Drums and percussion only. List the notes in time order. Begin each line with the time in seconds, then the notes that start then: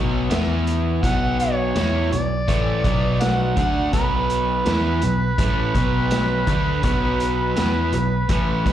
0.31 snare, closed hi-hat
0.67 closed hi-hat
1.03 kick, closed hi-hat
1.40 closed hi-hat
1.75 snare, closed hi-hat
2.12 closed hi-hat
2.48 kick, closed hi-hat
2.84 kick, closed hi-hat
3.21 snare, closed hi-hat
3.57 kick, closed hi-hat
3.93 kick, closed hi-hat
4.30 closed hi-hat
4.66 snare, closed hi-hat
5.02 closed hi-hat
5.38 kick, closed hi-hat
5.75 kick, closed hi-hat
6.11 snare, closed hi-hat
6.47 kick, closed hi-hat
6.83 kick, closed hi-hat
7.20 closed hi-hat
7.56 snare, closed hi-hat
7.93 closed hi-hat
8.29 kick, closed hi-hat
8.66 kick, closed hi-hat